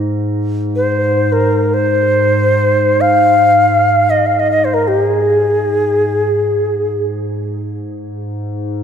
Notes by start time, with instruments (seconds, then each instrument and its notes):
Already playing: ambient pad G#2
0.76 native american-style wooden flute C5
1.32 native american-style wooden flute A#4
1.74 native american-style wooden flute C5
3.01 native american-style wooden flute F5
4.10 native american-style wooden flute D#5
4.26 native american-style wooden flute F5
4.40 native american-style wooden flute D#5
4.51 native american-style wooden flute D#5
4.65 native american-style wooden flute C5
4.74 native american-style wooden flute A#4
4.88 native american-style wooden flute G4
5.05 native american-style wooden flute G#4
7.79 ambient pad G#2